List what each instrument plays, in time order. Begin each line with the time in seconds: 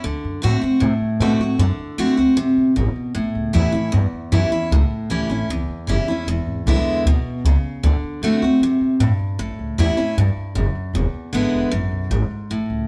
0.04 upright bass D2, steel-string acoustic guitar D3
0.24 upright bass F#2
0.42 upright bass A2, steel-string acoustic guitar D3 A3 C4 F#4
0.61 steel-string acoustic guitar C4 F#4, muted upright bass stroke
0.80 steel-string acoustic guitar A2, upright bass C3
1.01 muted upright bass stroke
1.20 upright bass B2, steel-string acoustic guitar D3 A3 C4 F#4
1.39 steel-string acoustic guitar C4 F#4, muted upright bass stroke
1.59 upright bass F#2, steel-string acoustic guitar D3
1.79 muted upright bass stroke
1.98 upright bass F#2, steel-string acoustic guitar D3 A3 C4 F#4
2.17 upright bass D2, steel-string acoustic guitar C4 F#4
2.36 upright bass F#2, steel-string acoustic guitar C3
2.57 upright bass A2
2.76 upright bass G#1, steel-string acoustic guitar B2
2.96 muted upright bass stroke
3.15 upright bass A1, steel-string acoustic guitar A2
3.35 upright bass C#2
3.53 upright bass E2, steel-string acoustic guitar E3 G3 C#4 E4
3.72 steel-string acoustic guitar C#4 E4, muted upright bass stroke
3.92 steel-string acoustic guitar E2, upright bass G2
4.13 muted upright bass stroke
4.32 upright bass F#2, steel-string acoustic guitar E3 G3 C#4 E4
4.51 steel-string acoustic guitar C#4 E4, muted upright bass stroke
4.71 upright bass C#2, steel-string acoustic guitar A2
4.90 muted upright bass stroke
5.10 upright bass C#2, steel-string acoustic guitar E3 G3 C#4 E4
5.29 upright bass A1, steel-string acoustic guitar C#4 E4
5.49 upright bass C#2, steel-string acoustic guitar E2
5.68 upright bass E2
5.87 upright bass F#1, steel-string acoustic guitar E3 G3 C#4 E4
6.08 steel-string acoustic guitar C#4 E4, muted upright bass stroke
6.27 upright bass E1, steel-string acoustic guitar E2
6.46 upright bass G#1
6.66 upright bass B1, steel-string acoustic guitar D3 G#3 B3 E4
6.85 muted upright bass stroke
7.05 upright bass D2, steel-string acoustic guitar B2
7.25 muted upright bass stroke
7.44 upright bass C#2, steel-string acoustic guitar C#3
7.64 muted upright bass stroke
7.83 upright bass D2, steel-string acoustic guitar D3
8.03 muted upright bass stroke
8.22 upright bass F#2, steel-string acoustic guitar D3 A3 C4 F#4
8.42 upright bass D2, steel-string acoustic guitar C4 F#4
8.60 upright bass F#2, steel-string acoustic guitar C3
8.81 upright bass A2
9.00 steel-string acoustic guitar G2, upright bass A2
9.19 muted upright bass stroke
9.39 upright bass A1, steel-string acoustic guitar A2
9.59 upright bass C#2
9.78 upright bass E2, steel-string acoustic guitar E3 G3 C#4 E4
9.97 steel-string acoustic guitar C#4 E4, muted upright bass stroke
10.17 upright bass G2, steel-string acoustic guitar G2
10.36 muted upright bass stroke
10.55 upright bass F#1, steel-string acoustic guitar F#2
10.75 muted upright bass stroke
10.93 upright bass E1, steel-string acoustic guitar E2
11.14 muted upright bass stroke
11.33 upright bass G#1, steel-string acoustic guitar D3 G#3 B3 E4
11.53 upright bass E1
11.71 upright bass G#1, steel-string acoustic guitar F#2
11.91 upright bass B1
12.10 upright bass G#1, steel-string acoustic guitar G#2
12.31 muted upright bass stroke
12.50 upright bass A1, steel-string acoustic guitar A2
12.70 upright bass C#2